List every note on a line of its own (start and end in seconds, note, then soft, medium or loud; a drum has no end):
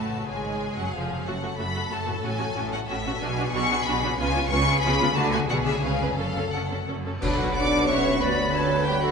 0.00 0.29 A1 medium
0.00 0.21 F#2 medium
0.00 0.29 A2 medium
0.00 0.23 A3 soft
0.00 0.28 A3 medium
0.00 2.10 C#4 soft
0.00 0.28 F#4 medium
0.00 0.24 C#5 soft
0.00 0.29 A5 medium
0.00 2.25 C#6 soft
0.11 1.20 C#3 soft
0.15 1.22 B3 soft
0.20 1.24 F4 soft
0.25 0.77 G#1 medium
0.25 0.77 G#2 medium
0.25 1.21 C#5 soft
0.25 0.77 G#5 medium
0.29 0.78 G#3 medium
0.29 1.26 G#4 medium
0.77 0.94 F#1 medium
0.77 0.94 F#2 medium
0.77 0.94 F#3 medium
0.77 0.94 F#5 medium
0.94 1.26 F1 medium
0.94 1.27 F2 medium
0.94 1.26 F3 medium
0.94 1.27 F5 medium
1.09 2.16 F#2 medium
1.14 3.16 A3 soft
1.18 2.14 F#4 soft
1.23 1.33 A3 medium
1.23 3.20 A4 medium
1.23 2.18 C#5 soft
1.23 1.59 F#5 medium
1.27 1.56 F#1 medium
1.27 1.56 F#2 medium
1.27 1.33 F#4 medium
1.42 1.49 A3 soft
1.42 1.49 F#4 soft
1.58 1.88 F#1 medium
1.58 1.88 F#2 medium
1.58 1.65 A3 medium
1.58 1.65 F#4 medium
1.58 1.91 B5 medium
1.74 1.81 A3 soft
1.74 1.81 F#4 medium
1.90 2.20 F#1 medium
1.90 2.20 F#2 medium
1.90 1.97 A3 medium
1.90 1.98 F#4 medium
1.90 2.24 A5 medium
2.06 3.14 A2 medium
2.06 2.13 A3 soft
2.06 2.13 F#4 soft
2.11 3.16 C#4 medium
2.15 3.12 F#4 soft
2.20 2.52 A2 medium
2.20 2.30 C#4 medium
2.20 2.30 F#4 medium
2.20 3.20 C#5 soft
2.24 2.53 A1 medium
2.24 2.72 G#5 medium
2.39 2.46 C#4 soft
2.39 2.45 F#4 soft
2.55 2.85 A1 medium
2.55 2.85 A2 medium
2.55 2.62 C#4 medium
2.55 2.62 F#4 medium
2.72 2.79 C#4 medium
2.72 2.79 F#4 medium
2.72 2.79 F#5 loud
2.88 3.18 A1 medium
2.88 3.17 A2 medium
2.88 2.96 C#4 medium
2.88 2.96 F#4 medium
2.88 3.21 E5 medium
3.04 4.11 B2 medium
3.04 3.12 C#4 medium
3.04 3.12 F#4 medium
3.09 4.13 D4 medium
3.13 4.15 F#4 medium
3.17 3.50 B2 medium
3.17 4.13 B4 medium
3.22 3.50 B1 medium
3.22 3.28 D4 medium
3.22 3.28 F#4 medium
3.22 4.18 G#4 medium
3.22 3.54 G#5 loud
3.38 3.45 D4 medium
3.38 3.45 F#4 medium
3.52 3.82 B1 medium
3.52 3.82 B2 medium
3.52 3.61 D4 medium
3.52 3.61 F#4 medium
3.52 3.85 C#6 loud
3.70 3.77 D4 medium
3.70 3.77 F#4 medium
3.85 4.14 B1 medium
3.85 4.14 B2 medium
3.85 3.94 D4 medium
3.85 3.93 F#4 medium
3.85 4.17 B5 loud
4.00 5.08 C#3 medium
4.00 4.10 D4 medium
4.00 4.10 F#4 medium
4.05 5.11 C#4 medium
4.09 5.13 F4 medium
4.14 4.46 C#2 medium
4.14 4.46 C#3 medium
4.14 5.15 B4 medium
4.14 4.50 G#5 loud
4.19 4.26 B3 medium
4.19 4.50 F4 medium
4.19 4.26 F4 medium
4.35 4.41 B3 medium
4.35 4.42 F4 medium
4.49 4.78 C#2 medium
4.49 4.79 C#3 medium
4.49 4.58 B3 medium
4.49 4.58 F4 medium
4.49 5.16 G#4 medium
4.49 4.82 C#6 loud
4.67 4.74 B3 medium
4.67 4.74 F4 medium
4.81 5.12 C#2 medium
4.81 5.12 C#3 loud
4.81 4.91 B3 medium
4.81 4.91 F4 medium
4.81 5.14 B5 loud
4.98 5.41 D3 medium
4.98 5.07 B3 medium
4.98 5.07 F4 medium
5.02 5.44 A3 medium
5.07 5.46 F#4 medium
5.12 5.45 D2 loud
5.12 5.45 D3 loud
5.12 5.48 A4 medium
5.16 5.23 A3 medium
5.16 5.48 F#4 medium
5.16 5.23 F#4 medium
5.16 5.32 A5 loud
5.31 5.75 B2 medium
5.31 5.40 A3 medium
5.31 5.40 F#4 medium
5.31 5.39 G#5 loud
5.36 5.68 B3 medium
5.40 5.80 D4 medium
5.45 5.79 B2 medium
5.45 5.77 G#4 medium
5.45 6.16 G#4 medium
5.49 5.79 B1 medium
5.49 5.56 D4 medium
5.49 5.57 G#4 medium
5.49 5.56 F#5 loud
5.65 6.10 C#3 medium
5.65 5.73 D4 medium
5.65 5.73 G#4 medium
5.65 5.82 E5 medium
5.69 6.12 B3 medium
5.73 6.07 C#4 medium
5.78 6.13 C#2 medium
5.78 6.17 G#4 soft
5.82 6.14 C#3 medium
5.82 5.90 C#4 medium
5.82 5.90 B4 medium
5.82 6.15 F5 medium
6.00 7.15 F#2 medium
6.00 6.08 C#4 medium
6.00 6.08 B4 medium
6.04 7.17 A3 soft
6.09 7.20 C#4 medium
6.13 7.22 A4 soft
6.13 7.05 A4 medium
6.13 6.52 F5 medium
6.18 6.49 F#1 medium
6.18 6.49 F#2 medium
6.18 6.26 C#4 medium
6.18 6.26 A4 medium
6.37 6.44 C#4 medium
6.37 6.44 A4 medium
6.53 6.84 F#1 medium
6.53 6.84 F#2 medium
6.53 6.61 C#4 medium
6.53 6.61 A4 medium
6.53 6.88 F#5 medium
6.71 6.78 C#4 medium
6.71 6.78 A4 medium
6.88 7.19 F#1 medium
6.88 7.19 F#2 medium
6.88 6.95 C#4 medium
6.88 6.95 A4 medium
7.06 7.13 C#4 soft
7.06 7.13 A4 soft
7.20 8.18 B1 medium
7.20 8.23 B1 medium
7.20 8.17 B2 medium
7.20 8.23 B2 medium
7.20 7.37 D3 medium
7.20 7.53 F#3 medium
7.20 9.11 B3 medium
7.20 7.38 D4 medium
7.20 7.28 F#4 medium
7.20 9.11 F#4 medium
7.20 7.52 B4 medium
7.20 7.38 D5 medium
7.20 7.53 B5 medium
7.20 concert bass drum medium
7.20 crash medium
7.31 7.96 B3 soft
7.38 7.47 F#3 medium
7.38 7.46 F#4 medium
7.38 7.44 A4 medium
7.38 7.54 B4 medium
7.38 7.55 F#5 medium
7.47 7.87 F#4 medium
7.53 8.21 F#3 medium
7.53 7.88 D4 medium
7.53 8.19 B4 medium
7.53 7.78 B4 medium
7.53 7.87 D5 medium
7.53 7.87 F#5 medium
7.53 8.20 B5 medium
7.53 7.88 D6 loud
7.63 8.61 B5 medium
7.72 8.70 F#5 medium
7.80 8.38 B4 medium
7.88 8.21 C#4 medium
7.88 8.45 F#4 medium
7.88 8.21 C#5 medium
7.88 8.21 E5 medium
7.88 8.21 C#6 medium
7.97 8.13 B3 soft
8.05 9.01 F#3 medium
8.14 8.30 B3 medium
8.20 9.11 D2 medium
8.20 9.11 D3 medium
8.20 9.11 F#3 medium
8.20 8.55 B3 medium
8.20 8.53 B4 medium
8.20 9.11 B4 medium
8.20 8.53 D5 medium
8.20 9.11 B5 medium
8.20 8.54 B5 loud
8.31 8.94 B3 medium
8.46 8.86 F#4 medium
8.54 8.86 A3 medium
8.54 8.87 A4 medium
8.54 8.77 B4 medium
8.54 8.87 C#5 medium
8.54 8.87 A5 medium
8.62 9.11 B5 medium
8.71 9.11 F#5 medium
8.79 9.11 B4 medium
8.85 9.11 F#4 medium
8.85 8.94 G4 medium
8.85 9.01 B4 medium
8.85 9.02 G5 loud
8.89 9.04 G3 medium
8.95 9.10 B3 soft
9.02 9.11 F#3 medium
9.02 9.11 F#4 medium
9.02 9.11 A4 medium
9.02 9.11 F#5 medium